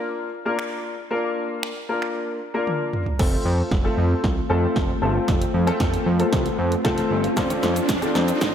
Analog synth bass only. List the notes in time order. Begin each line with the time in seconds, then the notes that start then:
3.19 F1
3.45 F2
3.72 F1
3.98 F2
4.24 C2
4.50 F2
4.76 F1
5.02 G1
5.28 F1
5.54 F2
5.80 F1
6.06 F2
6.33 C2
6.59 F2
6.85 F1
7.11 G1
7.37 F1
7.63 F2
7.89 F1
8.15 F2
8.41 A1